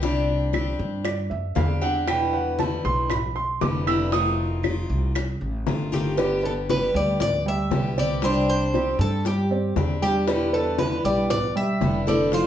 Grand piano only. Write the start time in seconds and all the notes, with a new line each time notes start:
1.05 D5
1.30 E5
1.56 F5
1.82 F#5
2.08 G5
2.33 F#5
2.59 A5
2.85 C6
3.10 B5
3.36 C6
3.61 D6
3.87 E6
4.12 D#6
6.17 B3 B4 D5
6.43 B3 B4 D5
6.94 G3 G4 G5
7.20 B3 B4 D5
7.46 G3 G4 G5
7.97 C4 C5 D5
8.23 G3 G4 G5
8.74 C4 C5 D5
9.25 G3 G4 G5
9.51 C4 C5 D5
10.02 G3 G4 G5
10.27 B3 B4 D5
10.53 B3 B4 D5
11.04 G3 G4 G5
11.30 B3 B4 D5
11.55 G3 G4 G5
12.07 A3 A4 C5
12.32 F3 F4 F5